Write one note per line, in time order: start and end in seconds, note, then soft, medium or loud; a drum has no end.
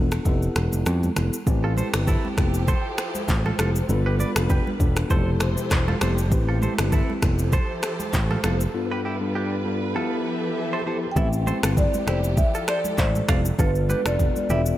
0.00 0.17 E1 medium
0.00 0.23 B3 medium
0.00 0.23 D4 medium
0.00 0.24 F4 medium
0.00 0.24 A4 medium
0.12 finger snap medium
0.12 cross-stick medium
0.12 shaker medium
0.25 0.48 F1 loud
0.25 1.10 B3 medium
0.25 1.10 E4 medium
0.25 1.10 G4 medium
0.25 1.10 A4 loud
0.25 kick loud
0.25 shaker medium
0.42 shaker medium
0.56 0.68 E1 medium
0.56 finger snap medium
0.56 cross-stick medium
0.56 shaker soft
0.72 0.83 F1 medium
0.72 high conga medium
0.72 shaker medium
0.86 1.08 F2 loud
0.86 finger snap medium
0.86 cross-stick medium
0.86 shaker medium
1.03 high conga medium
1.03 shaker soft
1.16 1.29 F1 medium
1.16 1.35 B3 medium
1.16 1.35 E4 medium
1.16 1.35 G4 medium
1.16 1.35 A4 medium
1.16 finger snap medium
1.16 cross-stick medium
1.16 high conga medium
1.16 low conga medium
1.16 shaker medium
1.33 shaker loud
1.47 1.81 A1 loud
1.47 2.37 A3 medium
1.47 2.37 C4 medium
1.47 1.90 C4 medium
1.47 1.90 E4 medium
1.47 3.87 G4 medium
1.47 1.90 G4 medium
1.47 1.90 B4 loud
1.47 kick loud
1.47 low conga medium
1.47 shaker medium
1.64 1.73 F4 medium
1.64 1.72 A4 medium
1.77 1.88 A4 medium
1.77 1.88 C5 medium
1.77 high conga medium
1.77 shaker medium
1.94 2.16 G1 medium
1.94 2.35 C4 medium
1.94 2.35 E4 medium
1.94 2.35 G4 medium
1.94 2.35 B4 medium
1.94 finger snap loud
1.94 cross-stick loud
1.94 shaker medium
2.07 2.27 E4 medium
2.07 2.27 A4 medium
2.07 kick loud
2.07 low conga medium
2.07 shaker medium
2.25 high conga medium
2.37 2.72 F1 medium
2.37 3.88 F3 medium
2.37 2.66 B3 medium
2.37 2.66 E4 medium
2.37 3.88 E4 medium
2.37 2.66 G4 medium
2.37 3.88 A4 medium
2.37 2.66 A4 medium
2.37 3.88 C5 medium
2.37 finger snap medium
2.37 kick loud
2.37 cross-stick medium
2.37 low conga medium
2.37 shaker medium
2.54 shaker medium
2.68 2.88 A4 medium
2.68 2.87 C5 medium
2.68 kick loud
2.68 shaker medium
2.98 finger snap medium
2.98 cross-stick medium
2.98 shaker soft
3.15 high conga medium
3.15 shaker medium
3.28 3.51 A1 medium
3.28 kick medium
3.28 clap medium
3.28 shaker medium
3.46 3.55 F4 medium
3.46 3.54 A4 medium
3.46 high conga medium
3.59 3.81 F1 loud
3.59 3.77 B3 medium
3.59 3.77 E4 medium
3.59 3.70 F4 medium
3.59 3.77 G4 medium
3.59 3.70 A4 medium
3.59 3.77 A4 medium
3.59 finger snap medium
3.59 cross-stick loud
3.59 high conga medium
3.59 shaker medium
3.76 shaker medium
3.89 4.23 G1 loud
3.89 5.09 G3 medium
3.89 4.32 B3 medium
3.89 4.32 D4 medium
3.89 5.09 F4 medium
3.89 4.32 F4 medium
3.89 4.33 A4 loud
3.89 5.09 B4 medium
3.89 low conga medium
3.89 shaker medium
4.06 4.15 G4 medium
4.06 4.15 B4 medium
4.19 4.31 B4 medium
4.19 4.30 D5 medium
4.19 high conga medium
4.19 shaker medium
4.36 4.58 F1 medium
4.36 4.77 B3 medium
4.36 4.77 D4 medium
4.36 4.77 F4 medium
4.36 4.77 A4 medium
4.36 finger snap loud
4.36 cross-stick loud
4.36 shaker medium
4.50 4.70 G4 medium
4.50 4.69 B4 medium
4.50 kick loud
4.50 low conga medium
4.50 shaker medium
4.67 high conga medium
4.80 5.02 E1 medium
4.80 5.08 B3 medium
4.80 5.08 D4 medium
4.80 5.08 F4 medium
4.80 5.09 A4 medium
4.80 kick loud
4.80 low conga medium
4.80 shaker medium
4.96 finger snap medium
4.96 cross-stick medium
4.96 shaker medium
5.10 5.55 F1 loud
5.10 5.95 B2 medium
5.10 6.30 F3 medium
5.10 6.30 E4 medium
5.10 5.95 E4 medium
5.10 7.20 G4 medium
5.10 5.95 G4 medium
5.10 6.30 A4 medium
5.10 5.95 A4 loud
5.10 5.30 A4 medium
5.10 6.30 C5 medium
5.10 5.30 C5 medium
5.10 kick loud
5.10 shaker medium
5.40 finger snap medium
5.40 cross-stick loud
5.40 shaker soft
5.57 high conga medium
5.57 shaker medium
5.71 5.93 E1 medium
5.71 finger snap medium
5.71 kick medium
5.71 cross-stick medium
5.71 clap medium
5.71 shaker medium
5.88 5.97 F4 medium
5.88 5.97 A4 medium
5.88 high conga medium
6.01 6.32 F1 medium
6.01 6.20 B3 medium
6.01 6.20 E4 medium
6.01 6.20 G4 medium
6.01 6.20 A4 medium
6.01 6.13 A4 medium
6.01 6.12 C5 medium
6.01 finger snap medium
6.01 cross-stick loud
6.01 high conga medium
6.01 shaker medium
6.18 shaker medium
6.32 6.66 A1 loud
6.32 7.22 A3 medium
6.32 6.75 C4 medium
6.32 7.22 C4 medium
6.32 6.75 E4 medium
6.32 6.75 G4 medium
6.32 6.75 B4 loud
6.32 kick loud
6.32 low conga medium
6.32 shaker medium
6.49 6.58 F4 medium
6.49 6.57 A4 medium
6.62 6.73 A4 medium
6.62 6.73 C5 medium
6.62 high conga medium
6.62 shaker medium
6.78 7.01 G1 medium
6.78 7.19 C4 medium
6.78 7.19 E4 medium
6.78 7.20 G4 medium
6.78 7.20 B4 medium
6.78 finger snap loud
6.78 cross-stick loud
6.78 shaker medium
6.92 7.12 E4 medium
6.92 7.12 A4 medium
6.92 kick loud
6.92 low conga medium
6.92 shaker medium
7.10 high conga medium
7.22 7.57 F1 medium
7.22 8.72 F3 medium
7.22 7.51 B3 medium
7.22 8.72 E4 medium
7.22 7.51 E4 medium
7.22 8.72 G4 medium
7.22 7.51 G4 medium
7.22 8.72 A4 medium
7.22 7.51 A4 medium
7.22 8.73 C5 medium
7.22 finger snap medium
7.22 kick loud
7.22 cross-stick medium
7.22 low conga medium
7.22 shaker medium
7.39 shaker medium
7.52 7.73 A4 medium
7.52 7.72 C5 medium
7.52 kick loud
7.52 shaker medium
7.83 finger snap medium
7.83 cross-stick medium
7.83 shaker medium
8.00 high conga medium
8.00 shaker medium
8.13 8.36 A1 medium
8.13 kick medium
8.13 clap medium
8.13 shaker medium
8.31 8.40 F4 medium
8.31 8.39 A4 medium
8.31 high conga medium
8.44 8.66 F1 loud
8.44 8.62 B3 medium
8.44 8.62 E4 medium
8.44 8.55 F4 medium
8.44 8.62 G4 medium
8.44 8.62 A4 medium
8.44 8.55 A4 medium
8.44 finger snap medium
8.44 cross-stick loud
8.44 high conga medium
8.44 shaker medium
8.60 shaker medium
8.74 9.17 G2 medium
8.74 9.94 G3 medium
8.74 9.17 B3 medium
8.74 9.17 D4 medium
8.74 9.94 F4 medium
8.74 9.17 F4 medium
8.74 9.17 A4 loud
8.74 11.14 B4 medium
8.92 9.00 G4 medium
8.92 9.00 B4 medium
9.05 9.16 E4 medium
9.05 9.15 G4 medium
9.20 9.61 G2 medium
9.20 9.62 B3 medium
9.20 9.62 D4 medium
9.20 9.62 F4 medium
9.20 9.62 A4 medium
9.35 9.55 D4 medium
9.35 9.54 G4 medium
9.65 9.93 G2 medium
9.65 9.93 B3 medium
9.65 9.93 D4 medium
9.65 9.93 F4 medium
9.65 9.93 A4 medium
9.95 10.79 F3 medium
9.95 11.15 F3 medium
9.95 10.80 B3 medium
9.95 10.80 E4 medium
9.95 10.15 F4 medium
9.95 11.15 G4 medium
9.95 10.80 G4 medium
9.95 11.15 A4 medium
9.95 10.80 A4 loud
9.95 10.15 A4 medium
9.95 11.15 E5 medium
10.73 10.82 A4 medium
10.73 10.82 C5 medium
10.86 11.04 F3 medium
10.86 11.04 B3 medium
10.86 11.04 E4 medium
10.86 11.05 G4 medium
10.86 11.05 A4 medium
10.86 10.98 A4 medium
10.86 10.97 C5 medium
11.12 11.17 G5 medium
11.16 11.51 A1 loud
11.16 12.07 A3 medium
11.16 11.59 C4 medium
11.16 12.07 C4 medium
11.16 11.59 E4 medium
11.16 11.28 E4 medium
11.16 11.59 G4 medium
11.16 13.57 G4 medium
11.16 11.27 A4 medium
11.16 11.60 B4 loud
11.16 11.74 E5 loud
11.16 kick loud
11.16 low conga medium
11.16 shaker medium
11.33 shaker medium
11.46 11.58 A4 medium
11.46 11.58 C5 medium
11.46 high conga medium
11.46 shaker medium
11.63 11.86 G1 medium
11.63 12.04 C4 medium
11.63 12.04 E4 medium
11.63 11.73 F4 medium
11.63 12.04 G4 medium
11.63 11.72 A4 medium
11.63 12.04 B4 medium
11.63 finger snap loud
11.63 cross-stick loud
11.63 shaker medium
11.77 12.09 D5 loud
11.77 kick loud
11.77 low conga medium
11.77 shaker medium
11.94 high conga medium
11.94 shaker medium
12.07 12.42 F1 loud
12.07 13.58 F3 medium
12.07 12.35 B3 medium
12.07 12.35 E4 medium
12.07 13.57 E4 medium
12.07 12.19 E4 medium
12.07 12.35 G4 medium
12.07 12.18 G4 medium
12.07 13.57 A4 medium
12.07 12.36 A4 medium
12.07 12.39 C5 loud
12.07 finger snap medium
12.07 cross-stick medium
12.07 low conga medium
12.07 shaker medium
12.24 shaker medium
12.37 12.69 E5 loud
12.37 kick loud
12.37 shaker medium
12.54 12.64 F4 medium
12.54 12.63 A4 medium
12.54 shaker medium
12.68 12.79 A4 medium
12.68 12.79 C5 medium
12.68 12.99 D5 loud
12.68 finger snap medium
12.68 cross-stick loud
12.68 shaker soft
12.84 high conga medium
12.84 shaker loud
12.98 13.20 A1 medium
12.98 13.42 C5 loud
12.98 13.10 C5 medium
12.98 13.09 E5 medium
12.98 kick loud
12.98 clap loud
12.98 shaker medium
13.15 high conga medium
13.15 shaker medium
13.28 13.51 F1 loud
13.28 13.47 B3 medium
13.28 13.47 E4 medium
13.28 13.47 G4 medium
13.28 13.47 A4 medium
13.28 13.40 D5 medium
13.28 13.39 F5 medium
13.28 finger snap medium
13.28 kick loud
13.28 cross-stick loud
13.28 high conga medium
13.28 shaker medium
13.45 shaker loud
13.59 13.93 G1 loud
13.59 14.78 G3 medium
13.59 14.02 B3 loud
13.59 14.02 D4 medium
13.59 14.78 F4 medium
13.59 14.02 F4 medium
13.59 13.70 F4 medium
13.59 14.02 A4 loud
13.59 13.70 A4 medium
13.59 13.88 B4 medium
13.59 kick loud
13.59 low conga medium
13.59 shaker medium
13.75 shaker medium
13.89 14.01 G4 medium
13.89 14.00 B4 medium
13.89 14.07 B4 medium
13.89 high conga medium
13.89 shaker medium
14.06 14.28 F1 medium
14.06 14.47 B3 medium
14.06 14.47 D4 medium
14.06 14.47 F4 medium
14.06 14.15 F4 medium
14.06 14.47 A4 medium
14.06 14.15 A4 medium
14.06 14.51 D5 medium
14.06 finger snap loud
14.06 cross-stick loud
14.06 shaker medium
14.19 kick loud
14.19 low conga medium
14.19 shaker medium
14.36 high conga medium
14.36 shaker medium
14.50 14.72 E1 medium
14.50 14.78 B3 medium
14.50 14.78 D4 medium
14.50 14.61 E4 medium
14.50 14.78 F4 medium
14.50 14.61 G4 medium
14.50 14.78 A4 medium
14.50 14.78 E5 medium
14.50 low conga medium
14.50 shaker medium
14.66 shaker medium